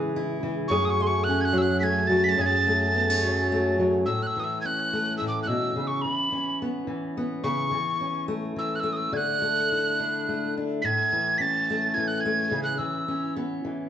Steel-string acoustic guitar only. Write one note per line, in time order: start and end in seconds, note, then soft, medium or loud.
0.00 0.42 E3 medium
0.00 0.15 E4 medium
0.00 0.71 G#4 medium
0.16 0.68 E4 medium
0.43 0.68 E3 medium
0.70 2.35 F#2 medium
0.70 2.36 G#4 medium
1.00 1.82 A3 medium
1.28 2.94 C#4 medium
1.53 2.08 F#3 medium
1.83 2.41 A3 medium
2.09 2.35 F#3 medium
2.37 4.04 F#2 medium
2.37 4.04 G#4 medium
2.67 3.51 A3 medium
2.94 3.10 B3 medium
3.10 4.08 C#4 medium
3.23 3.78 F#3 medium
3.52 4.05 A3 medium
3.79 4.04 F#3 medium
4.06 5.19 A2 medium
4.36 6.04 E3 medium
4.65 6.32 C#4 soft
4.93 5.74 A3 medium
5.21 5.47 A2 medium
5.48 5.76 B2 medium
5.76 6.04 C#3 medium
6.04 6.87 E3 medium
6.32 7.42 C#4 medium
6.62 7.16 B3 medium
6.87 7.71 E3 medium
7.17 7.42 B3 medium
7.43 7.72 C#3 medium
7.71 8.56 E3 medium
8.01 9.10 C#4 soft
8.28 8.83 A3 medium
8.56 9.12 E3 medium
8.83 9.41 A3 soft
9.12 10.82 D3 medium
9.42 10.26 A3 medium
9.72 13.22 E4 medium
10.00 10.55 D4 medium
10.29 10.80 A3 soft
10.57 10.81 D4 soft
10.84 12.51 A2 medium
11.13 11.97 E3 medium
11.40 13.08 C#4 medium
11.70 12.24 A3 medium
11.97 12.79 E3 medium
12.25 12.49 A3 medium
12.51 12.79 C#3 medium
12.79 13.64 E3 medium
13.08 13.89 C#4 medium
13.36 13.89 B3 medium
13.65 13.89 E3 medium